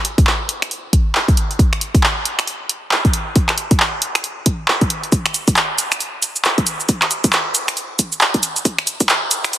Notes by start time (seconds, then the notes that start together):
0.05 closed hi-hat
0.18 kick, closed hi-hat
0.27 clap
0.49 closed hi-hat
0.62 finger snap, closed hi-hat
0.71 closed hi-hat
0.93 kick, closed hi-hat
1.15 clap
1.28 kick, closed hi-hat
1.37 closed hi-hat
1.51 closed hi-hat
1.59 kick, closed hi-hat
1.73 finger snap, closed hi-hat
1.81 closed hi-hat
1.95 kick, closed hi-hat
2.03 clap
2.25 closed hi-hat
2.39 finger snap, closed hi-hat
2.47 closed hi-hat
2.69 closed hi-hat
2.91 clap
3.05 kick, closed hi-hat
3.13 closed hi-hat
3.36 kick, closed hi-hat
3.49 finger snap, clap, closed hi-hat
3.58 closed hi-hat
3.71 kick, closed hi-hat
3.80 clap
4.02 closed hi-hat
4.15 finger snap, closed hi-hat
4.24 closed hi-hat
4.46 kick, closed hi-hat
4.68 clap
4.81 kick, closed hi-hat
4.90 closed hi-hat
5.03 closed hi-hat
5.12 kick, closed hi-hat, shaker
5.26 finger snap, closed hi-hat
5.34 closed hi-hat, shaker
5.48 kick, closed hi-hat, shaker
5.56 clap, shaker
5.78 closed hi-hat, shaker
5.92 finger snap, closed hi-hat, shaker
6.00 closed hi-hat, shaker
6.23 closed hi-hat, shaker
6.36 shaker
6.45 clap, shaker
6.58 kick, closed hi-hat
6.67 closed hi-hat, shaker
6.80 shaker
6.89 kick, closed hi-hat, shaker
7.02 finger snap, clap, closed hi-hat
7.11 closed hi-hat, shaker
7.24 kick, closed hi-hat, shaker
7.33 clap, shaker
7.55 closed hi-hat, shaker
7.68 finger snap, closed hi-hat, shaker
7.77 closed hi-hat, shaker
7.99 kick, closed hi-hat, shaker
8.12 shaker
8.21 clap, shaker
8.34 kick, closed hi-hat
8.43 closed hi-hat, shaker
8.56 closed hi-hat, shaker
8.65 kick, closed hi-hat, shaker
8.78 finger snap, closed hi-hat
8.87 closed hi-hat, shaker
9.00 kick, closed hi-hat, shaker
9.09 clap, shaker
9.31 closed hi-hat, shaker
9.44 finger snap, closed hi-hat, shaker
9.53 closed hi-hat, shaker